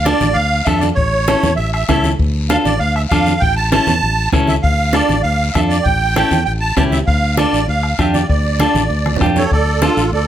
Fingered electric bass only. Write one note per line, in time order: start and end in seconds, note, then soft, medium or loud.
0.00 0.12 D2 medium
0.21 0.33 A1 medium
0.36 0.60 D2 medium
0.67 0.91 F2 medium
0.97 1.34 A1 medium
1.43 1.55 E2 medium
1.58 1.83 A1 medium
1.89 2.13 C#2 medium
2.19 2.56 D2 medium
2.65 2.77 A1 medium
2.80 3.05 D2 medium
3.11 3.36 F2 medium
3.42 3.78 A1 medium
3.87 3.99 E2 medium
4.02 4.27 A1 medium
4.33 4.57 C#2 medium
4.64 5.00 D2 medium
5.09 5.21 A1 medium
5.24 5.49 D2 medium
5.55 5.79 F2 medium
5.85 6.22 A1 medium
6.31 6.43 E2 medium
6.46 6.71 A1 medium
6.77 7.01 C#2 medium
7.07 7.44 D2 medium
7.53 7.65 A1 medium
7.68 7.93 D2 medium
7.99 8.23 F2 medium
8.29 8.66 D2 medium
8.74 8.87 A1 medium
8.90 9.14 D2 medium
9.21 9.45 F2 medium
9.51 9.88 D2 medium
9.97 10.09 A1 medium
10.12 10.27 D2 medium